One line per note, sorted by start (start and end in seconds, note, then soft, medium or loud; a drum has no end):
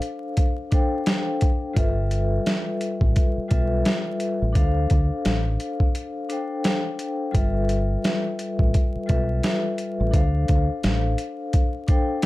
0.00 0.71 D4 medium
0.00 0.72 A4 medium
0.00 0.73 C5 medium
0.00 1.78 F5 medium
0.00 closed hi-hat medium
0.37 kick loud
0.37 closed hi-hat medium
0.71 1.40 D4 medium
0.71 1.40 A4 medium
0.71 1.41 C5 medium
0.71 1.41 G5 medium
0.71 kick loud
0.71 closed hi-hat medium
1.06 snare loud
1.06 closed hi-hat loud
1.41 kick medium
1.41 closed hi-hat medium
1.73 2.38 G1 loud
1.73 2.68 G3 medium
1.73 2.69 F4 medium
1.73 2.69 A4 medium
1.73 2.70 B4 medium
1.73 2.70 E5 loud
1.73 kick loud
1.73 closed hi-hat loud
2.11 closed hi-hat medium
2.46 snare loud
2.46 closed hi-hat medium
2.81 closed hi-hat medium
3.01 3.14 A1 medium
3.01 kick medium
3.16 kick loud
3.16 closed hi-hat medium
3.38 muted fingered electric bass stroke soft
3.48 3.82 B1 medium
3.48 4.18 G3 medium
3.48 4.18 F4 medium
3.48 4.19 A4 medium
3.48 4.19 B4 medium
3.48 4.20 E5 medium
3.48 kick loud
3.48 closed hi-hat medium
3.85 snare loud
3.85 closed hi-hat medium
4.20 closed hi-hat medium
4.42 4.54 A1 medium
4.53 4.86 D2 loud
4.53 5.48 D4 medium
4.53 5.48 A4 medium
4.53 5.49 C5 medium
4.53 5.49 F5 medium
4.53 kick loud
4.53 closed hi-hat loud
4.90 5.09 D2 medium
4.90 kick loud
4.90 closed hi-hat medium
5.25 5.56 A1 medium
5.25 snare loud
5.25 closed hi-hat medium
5.60 closed hi-hat medium
5.80 kick medium
5.95 closed hi-hat medium
6.29 6.98 D4 medium
6.29 6.98 A4 medium
6.29 6.99 C5 medium
6.29 7.00 G5 medium
6.29 closed hi-hat medium
6.64 snare loud
6.64 closed hi-hat loud
6.99 closed hi-hat medium
7.31 7.96 G1 loud
7.31 8.27 G3 medium
7.31 8.27 F4 medium
7.31 8.27 A4 medium
7.31 8.28 B4 medium
7.31 8.28 E5 medium
7.31 kick loud
7.31 closed hi-hat loud
7.69 closed hi-hat medium
8.04 snare loud
8.04 closed hi-hat medium
8.39 closed hi-hat medium
8.59 8.72 A1 medium
8.59 kick medium
8.74 kick loud
8.74 closed hi-hat medium
8.96 muted fingered electric bass stroke soft
9.06 9.40 B1 medium
9.06 9.76 G3 medium
9.06 9.76 F4 medium
9.06 9.77 A4 medium
9.06 9.77 B4 medium
9.06 9.78 E5 medium
9.06 kick loud
9.06 closed hi-hat medium
9.43 snare loud
9.43 closed hi-hat medium
9.78 closed hi-hat medium
10.00 10.12 A1 medium
10.11 10.44 D2 loud
10.11 11.06 D4 medium
10.11 11.06 A4 medium
10.11 11.07 C5 medium
10.11 11.08 F5 medium
10.11 kick loud
10.11 closed hi-hat loud
10.48 10.67 D2 medium
10.48 kick medium
10.48 closed hi-hat medium
10.83 11.14 A1 medium
10.83 snare loud
10.83 closed hi-hat medium
11.18 closed hi-hat medium
11.53 kick loud
11.53 closed hi-hat medium
11.87 12.26 D4 medium
11.87 12.26 A4 medium
11.87 12.26 C5 medium
11.87 12.26 G5 medium
11.87 kick loud
11.87 closed hi-hat medium
12.22 closed hi-hat medium